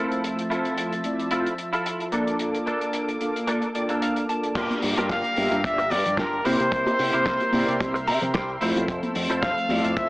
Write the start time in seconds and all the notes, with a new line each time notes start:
Already playing: F3 A3 C4 E4 F4 A4 C5 E5 A5
0.12 closed hi-hat
0.22 F3 A3 C4 C5, closed hi-hat
0.39 closed hi-hat
0.50 E4 F4 A4, closed hi-hat
0.65 closed hi-hat
0.78 closed hi-hat
0.92 closed hi-hat
1.04 A3 C4 E4 F4 D5, closed hi-hat
1.20 closed hi-hat
1.31 A3 C4 E4 F4 A4 C5, closed hi-hat
1.46 closed hi-hat
1.58 closed hi-hat
1.73 E4 F4 A4, closed hi-hat
1.86 closed hi-hat
2.00 closed hi-hat
2.12 A#3 D4 F4 A4 D5 D6, closed hi-hat
2.27 closed hi-hat
2.39 A#3 D4 F4 A4 D5, closed hi-hat
2.55 closed hi-hat
2.66 A#3 D4 A4, closed hi-hat
2.81 closed hi-hat
2.93 closed hi-hat
3.09 closed hi-hat
3.20 A#3 D4 F4 A4 F5, closed hi-hat
3.36 closed hi-hat
3.47 A#3 D4 F4 A4 D5, closed hi-hat
3.62 closed hi-hat
3.75 A#3 D4 F4 A4 D5 G5, closed hi-hat
3.89 A#3 D4 F4 A4 F5, closed hi-hat
4.02 F5, closed hi-hat
4.16 closed hi-hat
4.29 A#3 D4 F4 A4 D5 A5, closed hi-hat
4.43 closed hi-hat
4.55 G1 A#3 D4 F4 G4 A#4 D5 F5 A#5, kick, closed hi-hat, crash, high bongo, maracas
4.70 closed hi-hat, high conga, maracas
4.82 G2, open hi-hat, maracas
4.97 G2 D4 F4 G4 A#4, closed hi-hat, high bongo, maracas
5.09 F5, kick, snare, closed hi-hat, maracas
5.24 closed hi-hat, maracas
5.36 G2 A#3 D4 F4 G4 E5, open hi-hat, high conga, maracas
5.51 G2, muted clean electric guitar stroke, closed hi-hat, high bongo, maracas
5.64 A#3 D4 F4 G4 D5 E5, kick, closed hi-hat, maracas
5.78 muted clean electric guitar stroke, closed hi-hat, maracas
5.90 G2 D5, muted clean electric guitar stroke, open hi-hat, high bongo, maracas
6.06 G2, closed hi-hat, low conga, maracas
6.17 D4 F4 G4 A#4, kick, snare, closed hi-hat, maracas
6.33 maracas
6.45 C3 A#3 C4 E4 G4 A#4 C5 E5 C6, open hi-hat, high bongo, maracas
6.60 C3, closed hi-hat, maracas
6.71 C2 A#3 C4, kick, closed hi-hat, maracas
6.87 closed hi-hat, high bongo, high conga, maracas
6.99 C3, open hi-hat, maracas
7.13 C3 E4 G4 A#4 C5, closed hi-hat, maracas
7.26 C2, kick, snare, closed hi-hat, maracas
7.40 closed hi-hat, high bongo, maracas
7.52 C3 A#3 C4 E4 G4 D5, open hi-hat, high conga, maracas
7.67 C3, muted clean electric guitar stroke, closed hi-hat, maracas
7.80 C2 C4 E4 G4 C5, kick, closed hi-hat, high bongo, maracas
7.94 muted clean electric guitar stroke, closed hi-hat, maracas
8.07 C3 A#5, muted clean electric guitar stroke, open hi-hat, maracas
8.22 C3, closed hi-hat, low conga, maracas
8.34 C2 E4 G4 A#4 C5 G5, kick, snare, closed hi-hat, high bongo, maracas
8.49 maracas
8.61 F2 A3 C4 E4 F4 A4 C5 F5 E6, open hi-hat, maracas
8.76 F2, closed hi-hat, high bongo, maracas
8.87 F1 F3 A3 C4 C5, kick, closed hi-hat, maracas
9.03 closed hi-hat, high conga, maracas
9.15 F2, open hi-hat, maracas
9.30 F2 E4 F4 A4 C5, closed hi-hat, high bongo, maracas
9.42 F5, kick, snare, closed hi-hat, maracas
9.57 closed hi-hat, maracas
9.69 F2 A3 C4 E4 F4 D5, open hi-hat, high bongo, high conga, maracas
9.84 F2, muted clean electric guitar stroke, closed hi-hat, maracas
9.96 F1 A3 C4 E4 F4 C5 E5, kick, closed hi-hat, maracas